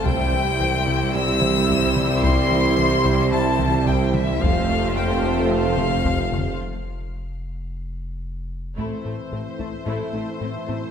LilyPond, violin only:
\new Staff \with { instrumentName = "Violin" } { \time 4/4 \key a \minor \tempo 4 = 110 g''2 e'''2 | c'''2 a''4 g''8 e''8 | f''4 g''4 f''2 | r1 |
r1 | }